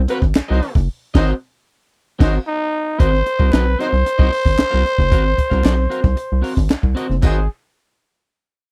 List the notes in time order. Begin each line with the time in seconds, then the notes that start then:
0.08 C4 F#4 A#4 B4 F5, closed hi-hat
0.22 G#1, muted clean electric guitar stroke, kick, snare
0.35 C2, muted clean electric guitar stroke, snare, clap, closed hi-hat
0.48 C2 F#3 C4 D#4 F#4 A#4 C5 D#5
0.62 muted clean electric guitar stroke, open hi-hat
0.75 F#1, muted clean electric guitar stroke, kick, snare
1.14 G#1 F#3 C4 D#4 F#4 A#4 C5 D#5, kick, snare, crash
2.19 G#1 F#3 C4 D#4 F#4 A#4 C5, kick, snare, crash
2.47 D#4
2.99 G#1 C4 F#4 A#4 C5 D#5, kick, closed hi-hat
3.12 muted clean electric guitar stroke, snare
3.26 muted clean electric guitar stroke, closed hi-hat
3.39 C2 C4 F#4 A#4 D#5, kick
3.52 B1 C4 F#4 A#4 B4 D#5, snare, clap, closed hi-hat
3.66 muted clean electric guitar stroke
3.79 F#3 C4 D#4 F#4 A#4 C5 D#5, snare, closed hi-hat
3.93 C2, muted clean electric guitar stroke, snare
4.06 muted clean electric guitar stroke, closed hi-hat
4.18 C2 F#3 C4 D#4 F#4 A#4 C5 D#5, kick
4.33 open hi-hat
4.45 G#1, muted clean electric guitar stroke, kick, snare
4.58 C2, muted clean electric guitar stroke, snare, clap, closed hi-hat
4.70 C2 C4 F#4 A#4 F5
4.85 muted clean electric guitar stroke, closed hi-hat
4.98 F#1, muted clean electric guitar stroke, kick, snare
5.11 G#1 C4 F#4 A#4 F5, kick, closed hi-hat
5.25 muted clean electric guitar stroke
5.37 muted clean electric guitar stroke, kick, closed hi-hat
5.50 C2 C4 F#4 A#4 F5, kick, snare
5.63 B1 C4 F#4 A#4 D#5, snare, clap, closed hi-hat
5.77 muted clean electric guitar stroke
5.89 C4 F#4 A#4 F5, closed hi-hat
6.03 C2, muted clean electric guitar stroke, kick, snare
6.16 muted clean electric guitar stroke, closed hi-hat
6.32 C2
6.42 C4 F#4 A#4 F5, open hi-hat
6.55 G#1, muted clean electric guitar stroke, kick, snare
6.70 C2, snare, clap, closed hi-hat
6.82 C2, muted clean electric guitar stroke, kick
6.95 C4 F#4 A#4 D#5, closed hi-hat
7.08 F#1, muted clean electric guitar stroke, snare
7.22 G#1 F#3 C4 D#4 F#4 G#4 A#4 C5 D#5, kick, clap, crash